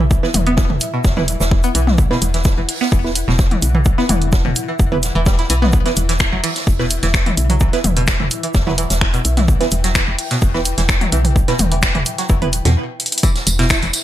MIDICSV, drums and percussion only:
0, 0, Header, 1, 2, 480
1, 0, Start_track
1, 0, Key_signature, 1, "minor"
1, 0, Tempo, 468750
1, 111, Time_signature, 4, 2, 24, 8
1, 14372, End_track
2, 0, Start_track
2, 0, Title_t, "Drums"
2, 110, Note_on_c, 9, 36, 119
2, 112, Note_on_c, 9, 82, 82
2, 213, Note_off_c, 9, 36, 0
2, 215, Note_off_c, 9, 82, 0
2, 238, Note_on_c, 9, 38, 50
2, 340, Note_off_c, 9, 38, 0
2, 349, Note_on_c, 9, 82, 64
2, 350, Note_on_c, 9, 48, 70
2, 351, Note_on_c, 9, 42, 97
2, 452, Note_off_c, 9, 82, 0
2, 453, Note_off_c, 9, 42, 0
2, 453, Note_off_c, 9, 48, 0
2, 477, Note_on_c, 9, 42, 38
2, 579, Note_off_c, 9, 42, 0
2, 581, Note_on_c, 9, 38, 111
2, 591, Note_on_c, 9, 36, 124
2, 596, Note_on_c, 9, 82, 90
2, 684, Note_off_c, 9, 38, 0
2, 693, Note_off_c, 9, 36, 0
2, 698, Note_off_c, 9, 82, 0
2, 717, Note_on_c, 9, 45, 84
2, 820, Note_off_c, 9, 45, 0
2, 823, Note_on_c, 9, 82, 68
2, 830, Note_on_c, 9, 42, 93
2, 925, Note_off_c, 9, 82, 0
2, 933, Note_off_c, 9, 42, 0
2, 1069, Note_on_c, 9, 82, 82
2, 1071, Note_on_c, 9, 36, 121
2, 1081, Note_on_c, 9, 38, 112
2, 1171, Note_off_c, 9, 82, 0
2, 1173, Note_off_c, 9, 36, 0
2, 1183, Note_off_c, 9, 38, 0
2, 1198, Note_on_c, 9, 45, 86
2, 1200, Note_on_c, 9, 38, 49
2, 1300, Note_off_c, 9, 45, 0
2, 1302, Note_off_c, 9, 38, 0
2, 1311, Note_on_c, 9, 42, 86
2, 1315, Note_on_c, 9, 82, 65
2, 1413, Note_off_c, 9, 42, 0
2, 1418, Note_off_c, 9, 82, 0
2, 1442, Note_on_c, 9, 82, 77
2, 1443, Note_on_c, 9, 38, 109
2, 1544, Note_off_c, 9, 82, 0
2, 1546, Note_off_c, 9, 38, 0
2, 1551, Note_on_c, 9, 36, 122
2, 1653, Note_off_c, 9, 36, 0
2, 1671, Note_on_c, 9, 82, 68
2, 1678, Note_on_c, 9, 42, 37
2, 1773, Note_off_c, 9, 82, 0
2, 1780, Note_off_c, 9, 42, 0
2, 1791, Note_on_c, 9, 42, 96
2, 1800, Note_on_c, 9, 82, 68
2, 1894, Note_off_c, 9, 42, 0
2, 1903, Note_off_c, 9, 82, 0
2, 1916, Note_on_c, 9, 38, 44
2, 1918, Note_on_c, 9, 48, 73
2, 2018, Note_off_c, 9, 38, 0
2, 2020, Note_off_c, 9, 48, 0
2, 2031, Note_on_c, 9, 36, 111
2, 2031, Note_on_c, 9, 82, 78
2, 2133, Note_off_c, 9, 36, 0
2, 2133, Note_off_c, 9, 82, 0
2, 2165, Note_on_c, 9, 38, 51
2, 2267, Note_off_c, 9, 38, 0
2, 2271, Note_on_c, 9, 42, 95
2, 2273, Note_on_c, 9, 82, 63
2, 2374, Note_off_c, 9, 42, 0
2, 2376, Note_off_c, 9, 82, 0
2, 2397, Note_on_c, 9, 42, 38
2, 2404, Note_on_c, 9, 38, 45
2, 2500, Note_off_c, 9, 42, 0
2, 2503, Note_on_c, 9, 82, 96
2, 2506, Note_off_c, 9, 38, 0
2, 2511, Note_on_c, 9, 36, 126
2, 2511, Note_on_c, 9, 38, 111
2, 2605, Note_off_c, 9, 82, 0
2, 2613, Note_off_c, 9, 36, 0
2, 2614, Note_off_c, 9, 38, 0
2, 2751, Note_on_c, 9, 42, 92
2, 2754, Note_on_c, 9, 46, 87
2, 2853, Note_off_c, 9, 42, 0
2, 2857, Note_off_c, 9, 46, 0
2, 2878, Note_on_c, 9, 38, 53
2, 2980, Note_off_c, 9, 38, 0
2, 2991, Note_on_c, 9, 36, 120
2, 2996, Note_on_c, 9, 82, 90
2, 3093, Note_off_c, 9, 36, 0
2, 3098, Note_off_c, 9, 82, 0
2, 3125, Note_on_c, 9, 38, 43
2, 3227, Note_off_c, 9, 38, 0
2, 3231, Note_on_c, 9, 42, 87
2, 3235, Note_on_c, 9, 82, 63
2, 3333, Note_off_c, 9, 42, 0
2, 3337, Note_off_c, 9, 82, 0
2, 3367, Note_on_c, 9, 38, 56
2, 3470, Note_off_c, 9, 38, 0
2, 3471, Note_on_c, 9, 36, 127
2, 3472, Note_on_c, 9, 38, 108
2, 3473, Note_on_c, 9, 82, 88
2, 3573, Note_off_c, 9, 36, 0
2, 3574, Note_off_c, 9, 38, 0
2, 3575, Note_off_c, 9, 82, 0
2, 3597, Note_on_c, 9, 42, 36
2, 3597, Note_on_c, 9, 48, 60
2, 3699, Note_off_c, 9, 48, 0
2, 3700, Note_off_c, 9, 42, 0
2, 3710, Note_on_c, 9, 42, 96
2, 3711, Note_on_c, 9, 82, 73
2, 3813, Note_off_c, 9, 42, 0
2, 3814, Note_off_c, 9, 82, 0
2, 3836, Note_on_c, 9, 45, 81
2, 3939, Note_off_c, 9, 45, 0
2, 3943, Note_on_c, 9, 82, 86
2, 3950, Note_on_c, 9, 36, 118
2, 4045, Note_off_c, 9, 82, 0
2, 4053, Note_off_c, 9, 36, 0
2, 4078, Note_on_c, 9, 38, 49
2, 4181, Note_off_c, 9, 38, 0
2, 4190, Note_on_c, 9, 42, 98
2, 4190, Note_on_c, 9, 48, 73
2, 4196, Note_on_c, 9, 82, 69
2, 4292, Note_off_c, 9, 48, 0
2, 4293, Note_off_c, 9, 42, 0
2, 4298, Note_off_c, 9, 82, 0
2, 4317, Note_on_c, 9, 42, 36
2, 4419, Note_off_c, 9, 42, 0
2, 4428, Note_on_c, 9, 82, 92
2, 4430, Note_on_c, 9, 36, 127
2, 4436, Note_on_c, 9, 38, 122
2, 4530, Note_off_c, 9, 82, 0
2, 4533, Note_off_c, 9, 36, 0
2, 4539, Note_off_c, 9, 38, 0
2, 4557, Note_on_c, 9, 45, 79
2, 4660, Note_off_c, 9, 45, 0
2, 4666, Note_on_c, 9, 82, 69
2, 4670, Note_on_c, 9, 42, 91
2, 4768, Note_off_c, 9, 82, 0
2, 4773, Note_off_c, 9, 42, 0
2, 4910, Note_on_c, 9, 36, 119
2, 4912, Note_on_c, 9, 82, 81
2, 5012, Note_off_c, 9, 36, 0
2, 5015, Note_off_c, 9, 82, 0
2, 5037, Note_on_c, 9, 45, 76
2, 5139, Note_off_c, 9, 45, 0
2, 5149, Note_on_c, 9, 82, 67
2, 5150, Note_on_c, 9, 42, 87
2, 5156, Note_on_c, 9, 38, 49
2, 5252, Note_off_c, 9, 42, 0
2, 5252, Note_off_c, 9, 82, 0
2, 5259, Note_off_c, 9, 38, 0
2, 5388, Note_on_c, 9, 82, 88
2, 5390, Note_on_c, 9, 36, 122
2, 5396, Note_on_c, 9, 38, 123
2, 5490, Note_off_c, 9, 82, 0
2, 5492, Note_off_c, 9, 36, 0
2, 5499, Note_off_c, 9, 38, 0
2, 5517, Note_on_c, 9, 42, 38
2, 5519, Note_on_c, 9, 38, 58
2, 5619, Note_off_c, 9, 42, 0
2, 5622, Note_off_c, 9, 38, 0
2, 5630, Note_on_c, 9, 42, 92
2, 5633, Note_on_c, 9, 82, 70
2, 5733, Note_off_c, 9, 42, 0
2, 5735, Note_off_c, 9, 82, 0
2, 5757, Note_on_c, 9, 48, 71
2, 5766, Note_on_c, 9, 38, 41
2, 5859, Note_off_c, 9, 48, 0
2, 5864, Note_on_c, 9, 82, 95
2, 5868, Note_off_c, 9, 38, 0
2, 5870, Note_on_c, 9, 36, 108
2, 5966, Note_off_c, 9, 82, 0
2, 5973, Note_off_c, 9, 36, 0
2, 5997, Note_on_c, 9, 38, 51
2, 5997, Note_on_c, 9, 42, 39
2, 6099, Note_off_c, 9, 38, 0
2, 6099, Note_off_c, 9, 42, 0
2, 6105, Note_on_c, 9, 82, 69
2, 6110, Note_on_c, 9, 42, 92
2, 6208, Note_off_c, 9, 82, 0
2, 6213, Note_off_c, 9, 42, 0
2, 6237, Note_on_c, 9, 42, 53
2, 6240, Note_on_c, 9, 38, 47
2, 6340, Note_off_c, 9, 42, 0
2, 6342, Note_off_c, 9, 38, 0
2, 6343, Note_on_c, 9, 82, 89
2, 6345, Note_on_c, 9, 38, 122
2, 6350, Note_on_c, 9, 26, 90
2, 6350, Note_on_c, 9, 36, 120
2, 6446, Note_off_c, 9, 82, 0
2, 6448, Note_off_c, 9, 38, 0
2, 6453, Note_off_c, 9, 26, 0
2, 6453, Note_off_c, 9, 36, 0
2, 6589, Note_on_c, 9, 46, 85
2, 6591, Note_on_c, 9, 42, 86
2, 6692, Note_off_c, 9, 46, 0
2, 6693, Note_off_c, 9, 42, 0
2, 6714, Note_on_c, 9, 38, 51
2, 6717, Note_on_c, 9, 42, 48
2, 6817, Note_off_c, 9, 38, 0
2, 6820, Note_off_c, 9, 42, 0
2, 6831, Note_on_c, 9, 36, 112
2, 6838, Note_on_c, 9, 82, 96
2, 6933, Note_off_c, 9, 36, 0
2, 6940, Note_off_c, 9, 82, 0
2, 6956, Note_on_c, 9, 38, 45
2, 7058, Note_off_c, 9, 38, 0
2, 7066, Note_on_c, 9, 82, 70
2, 7071, Note_on_c, 9, 42, 91
2, 7168, Note_off_c, 9, 82, 0
2, 7173, Note_off_c, 9, 42, 0
2, 7197, Note_on_c, 9, 42, 52
2, 7200, Note_on_c, 9, 38, 52
2, 7300, Note_off_c, 9, 42, 0
2, 7302, Note_off_c, 9, 38, 0
2, 7311, Note_on_c, 9, 26, 92
2, 7311, Note_on_c, 9, 36, 125
2, 7311, Note_on_c, 9, 38, 116
2, 7314, Note_on_c, 9, 82, 81
2, 7413, Note_off_c, 9, 26, 0
2, 7413, Note_off_c, 9, 36, 0
2, 7413, Note_off_c, 9, 38, 0
2, 7416, Note_off_c, 9, 82, 0
2, 7437, Note_on_c, 9, 48, 60
2, 7438, Note_on_c, 9, 42, 40
2, 7540, Note_off_c, 9, 42, 0
2, 7540, Note_off_c, 9, 48, 0
2, 7551, Note_on_c, 9, 42, 92
2, 7553, Note_on_c, 9, 82, 69
2, 7653, Note_off_c, 9, 42, 0
2, 7655, Note_off_c, 9, 82, 0
2, 7677, Note_on_c, 9, 42, 50
2, 7677, Note_on_c, 9, 45, 77
2, 7779, Note_off_c, 9, 45, 0
2, 7780, Note_off_c, 9, 42, 0
2, 7785, Note_on_c, 9, 82, 90
2, 7791, Note_on_c, 9, 36, 112
2, 7887, Note_off_c, 9, 82, 0
2, 7893, Note_off_c, 9, 36, 0
2, 7910, Note_on_c, 9, 38, 48
2, 7917, Note_on_c, 9, 42, 41
2, 8012, Note_off_c, 9, 38, 0
2, 8020, Note_off_c, 9, 42, 0
2, 8031, Note_on_c, 9, 42, 87
2, 8031, Note_on_c, 9, 48, 64
2, 8036, Note_on_c, 9, 82, 72
2, 8133, Note_off_c, 9, 42, 0
2, 8133, Note_off_c, 9, 48, 0
2, 8139, Note_off_c, 9, 82, 0
2, 8157, Note_on_c, 9, 42, 51
2, 8259, Note_off_c, 9, 42, 0
2, 8268, Note_on_c, 9, 82, 97
2, 8270, Note_on_c, 9, 26, 83
2, 8271, Note_on_c, 9, 36, 117
2, 8277, Note_on_c, 9, 38, 111
2, 8371, Note_off_c, 9, 82, 0
2, 8372, Note_off_c, 9, 26, 0
2, 8373, Note_off_c, 9, 36, 0
2, 8380, Note_off_c, 9, 38, 0
2, 8397, Note_on_c, 9, 45, 79
2, 8499, Note_off_c, 9, 45, 0
2, 8507, Note_on_c, 9, 82, 72
2, 8510, Note_on_c, 9, 42, 85
2, 8610, Note_off_c, 9, 82, 0
2, 8613, Note_off_c, 9, 42, 0
2, 8637, Note_on_c, 9, 42, 51
2, 8739, Note_off_c, 9, 42, 0
2, 8747, Note_on_c, 9, 82, 74
2, 8751, Note_on_c, 9, 36, 111
2, 8752, Note_on_c, 9, 38, 115
2, 8849, Note_off_c, 9, 82, 0
2, 8853, Note_off_c, 9, 36, 0
2, 8854, Note_off_c, 9, 38, 0
2, 8877, Note_on_c, 9, 45, 78
2, 8884, Note_on_c, 9, 38, 48
2, 8979, Note_off_c, 9, 45, 0
2, 8987, Note_off_c, 9, 38, 0
2, 8990, Note_on_c, 9, 42, 89
2, 8997, Note_on_c, 9, 82, 62
2, 9093, Note_off_c, 9, 42, 0
2, 9100, Note_off_c, 9, 82, 0
2, 9117, Note_on_c, 9, 42, 54
2, 9120, Note_on_c, 9, 38, 102
2, 9120, Note_on_c, 9, 82, 81
2, 9219, Note_off_c, 9, 42, 0
2, 9222, Note_off_c, 9, 38, 0
2, 9222, Note_off_c, 9, 82, 0
2, 9230, Note_on_c, 9, 26, 89
2, 9231, Note_on_c, 9, 36, 115
2, 9333, Note_off_c, 9, 26, 0
2, 9333, Note_off_c, 9, 36, 0
2, 9357, Note_on_c, 9, 42, 43
2, 9358, Note_on_c, 9, 82, 63
2, 9460, Note_off_c, 9, 42, 0
2, 9460, Note_off_c, 9, 82, 0
2, 9471, Note_on_c, 9, 42, 92
2, 9472, Note_on_c, 9, 82, 75
2, 9573, Note_off_c, 9, 42, 0
2, 9574, Note_off_c, 9, 82, 0
2, 9593, Note_on_c, 9, 38, 42
2, 9597, Note_on_c, 9, 42, 51
2, 9597, Note_on_c, 9, 48, 67
2, 9696, Note_off_c, 9, 38, 0
2, 9699, Note_off_c, 9, 42, 0
2, 9699, Note_off_c, 9, 48, 0
2, 9710, Note_on_c, 9, 36, 104
2, 9711, Note_on_c, 9, 82, 85
2, 9813, Note_off_c, 9, 36, 0
2, 9813, Note_off_c, 9, 82, 0
2, 9837, Note_on_c, 9, 42, 43
2, 9845, Note_on_c, 9, 38, 46
2, 9939, Note_off_c, 9, 42, 0
2, 9945, Note_on_c, 9, 82, 67
2, 9947, Note_off_c, 9, 38, 0
2, 9950, Note_on_c, 9, 42, 87
2, 10047, Note_off_c, 9, 82, 0
2, 10052, Note_off_c, 9, 42, 0
2, 10077, Note_on_c, 9, 42, 54
2, 10078, Note_on_c, 9, 38, 56
2, 10179, Note_off_c, 9, 42, 0
2, 10180, Note_off_c, 9, 38, 0
2, 10189, Note_on_c, 9, 82, 93
2, 10190, Note_on_c, 9, 26, 89
2, 10190, Note_on_c, 9, 36, 111
2, 10192, Note_on_c, 9, 38, 113
2, 10291, Note_off_c, 9, 82, 0
2, 10292, Note_off_c, 9, 26, 0
2, 10293, Note_off_c, 9, 36, 0
2, 10294, Note_off_c, 9, 38, 0
2, 10430, Note_on_c, 9, 42, 85
2, 10430, Note_on_c, 9, 46, 78
2, 10532, Note_off_c, 9, 42, 0
2, 10533, Note_off_c, 9, 46, 0
2, 10554, Note_on_c, 9, 38, 54
2, 10557, Note_on_c, 9, 42, 51
2, 10656, Note_off_c, 9, 38, 0
2, 10659, Note_off_c, 9, 42, 0
2, 10667, Note_on_c, 9, 82, 90
2, 10670, Note_on_c, 9, 36, 108
2, 10770, Note_off_c, 9, 82, 0
2, 10773, Note_off_c, 9, 36, 0
2, 10795, Note_on_c, 9, 38, 45
2, 10897, Note_off_c, 9, 38, 0
2, 10905, Note_on_c, 9, 82, 69
2, 10910, Note_on_c, 9, 42, 88
2, 11007, Note_off_c, 9, 82, 0
2, 11012, Note_off_c, 9, 42, 0
2, 11036, Note_on_c, 9, 38, 54
2, 11037, Note_on_c, 9, 42, 56
2, 11138, Note_off_c, 9, 38, 0
2, 11139, Note_off_c, 9, 42, 0
2, 11144, Note_on_c, 9, 38, 125
2, 11150, Note_on_c, 9, 26, 93
2, 11150, Note_on_c, 9, 36, 117
2, 11152, Note_on_c, 9, 82, 83
2, 11247, Note_off_c, 9, 38, 0
2, 11252, Note_off_c, 9, 26, 0
2, 11253, Note_off_c, 9, 36, 0
2, 11255, Note_off_c, 9, 82, 0
2, 11277, Note_on_c, 9, 42, 43
2, 11277, Note_on_c, 9, 48, 57
2, 11379, Note_off_c, 9, 42, 0
2, 11379, Note_off_c, 9, 48, 0
2, 11390, Note_on_c, 9, 42, 90
2, 11392, Note_on_c, 9, 82, 73
2, 11493, Note_off_c, 9, 42, 0
2, 11494, Note_off_c, 9, 82, 0
2, 11517, Note_on_c, 9, 42, 52
2, 11517, Note_on_c, 9, 45, 78
2, 11619, Note_off_c, 9, 42, 0
2, 11619, Note_off_c, 9, 45, 0
2, 11630, Note_on_c, 9, 36, 110
2, 11638, Note_on_c, 9, 82, 86
2, 11733, Note_off_c, 9, 36, 0
2, 11740, Note_off_c, 9, 82, 0
2, 11757, Note_on_c, 9, 42, 46
2, 11759, Note_on_c, 9, 38, 51
2, 11860, Note_off_c, 9, 42, 0
2, 11862, Note_off_c, 9, 38, 0
2, 11867, Note_on_c, 9, 82, 77
2, 11870, Note_on_c, 9, 48, 64
2, 11871, Note_on_c, 9, 42, 87
2, 11969, Note_off_c, 9, 82, 0
2, 11973, Note_off_c, 9, 42, 0
2, 11973, Note_off_c, 9, 48, 0
2, 11997, Note_on_c, 9, 42, 57
2, 12100, Note_off_c, 9, 42, 0
2, 12109, Note_on_c, 9, 82, 99
2, 12110, Note_on_c, 9, 36, 113
2, 12111, Note_on_c, 9, 26, 95
2, 12113, Note_on_c, 9, 38, 115
2, 12212, Note_off_c, 9, 82, 0
2, 12213, Note_off_c, 9, 26, 0
2, 12213, Note_off_c, 9, 36, 0
2, 12215, Note_off_c, 9, 38, 0
2, 12237, Note_on_c, 9, 42, 30
2, 12237, Note_on_c, 9, 45, 81
2, 12339, Note_off_c, 9, 42, 0
2, 12339, Note_off_c, 9, 45, 0
2, 12347, Note_on_c, 9, 82, 75
2, 12350, Note_on_c, 9, 42, 85
2, 12449, Note_off_c, 9, 82, 0
2, 12453, Note_off_c, 9, 42, 0
2, 12471, Note_on_c, 9, 38, 46
2, 12477, Note_on_c, 9, 42, 54
2, 12574, Note_off_c, 9, 38, 0
2, 12579, Note_off_c, 9, 42, 0
2, 12585, Note_on_c, 9, 82, 93
2, 12591, Note_on_c, 9, 36, 118
2, 12688, Note_off_c, 9, 82, 0
2, 12693, Note_off_c, 9, 36, 0
2, 12717, Note_on_c, 9, 42, 32
2, 12717, Note_on_c, 9, 45, 83
2, 12819, Note_off_c, 9, 42, 0
2, 12819, Note_off_c, 9, 45, 0
2, 12830, Note_on_c, 9, 42, 87
2, 12831, Note_on_c, 9, 82, 70
2, 12932, Note_off_c, 9, 42, 0
2, 12933, Note_off_c, 9, 82, 0
2, 12957, Note_on_c, 9, 38, 44
2, 12957, Note_on_c, 9, 42, 55
2, 13059, Note_off_c, 9, 42, 0
2, 13060, Note_off_c, 9, 38, 0
2, 13311, Note_on_c, 9, 42, 55
2, 13374, Note_off_c, 9, 42, 0
2, 13374, Note_on_c, 9, 42, 64
2, 13437, Note_off_c, 9, 42, 0
2, 13437, Note_on_c, 9, 42, 74
2, 13494, Note_off_c, 9, 42, 0
2, 13494, Note_on_c, 9, 42, 82
2, 13549, Note_on_c, 9, 82, 88
2, 13551, Note_off_c, 9, 42, 0
2, 13551, Note_on_c, 9, 36, 111
2, 13551, Note_on_c, 9, 42, 69
2, 13551, Note_on_c, 9, 54, 48
2, 13651, Note_off_c, 9, 82, 0
2, 13653, Note_off_c, 9, 36, 0
2, 13653, Note_off_c, 9, 42, 0
2, 13653, Note_off_c, 9, 54, 0
2, 13673, Note_on_c, 9, 38, 51
2, 13676, Note_on_c, 9, 54, 27
2, 13677, Note_on_c, 9, 42, 45
2, 13776, Note_off_c, 9, 38, 0
2, 13778, Note_off_c, 9, 54, 0
2, 13779, Note_off_c, 9, 42, 0
2, 13791, Note_on_c, 9, 42, 98
2, 13795, Note_on_c, 9, 82, 71
2, 13796, Note_on_c, 9, 54, 103
2, 13893, Note_off_c, 9, 42, 0
2, 13897, Note_off_c, 9, 82, 0
2, 13898, Note_off_c, 9, 54, 0
2, 13917, Note_on_c, 9, 42, 38
2, 13919, Note_on_c, 9, 54, 37
2, 13930, Note_on_c, 9, 38, 51
2, 14020, Note_off_c, 9, 42, 0
2, 14021, Note_off_c, 9, 54, 0
2, 14026, Note_on_c, 9, 54, 50
2, 14026, Note_on_c, 9, 82, 87
2, 14031, Note_on_c, 9, 26, 94
2, 14031, Note_on_c, 9, 36, 121
2, 14031, Note_on_c, 9, 42, 63
2, 14032, Note_off_c, 9, 38, 0
2, 14037, Note_on_c, 9, 38, 113
2, 14128, Note_off_c, 9, 54, 0
2, 14128, Note_off_c, 9, 82, 0
2, 14133, Note_off_c, 9, 26, 0
2, 14133, Note_off_c, 9, 36, 0
2, 14133, Note_off_c, 9, 42, 0
2, 14140, Note_off_c, 9, 38, 0
2, 14153, Note_on_c, 9, 54, 26
2, 14157, Note_on_c, 9, 42, 43
2, 14255, Note_off_c, 9, 54, 0
2, 14260, Note_off_c, 9, 42, 0
2, 14266, Note_on_c, 9, 46, 84
2, 14267, Note_on_c, 9, 54, 92
2, 14270, Note_on_c, 9, 42, 91
2, 14369, Note_off_c, 9, 46, 0
2, 14369, Note_off_c, 9, 54, 0
2, 14372, Note_off_c, 9, 42, 0
2, 14372, End_track
0, 0, End_of_file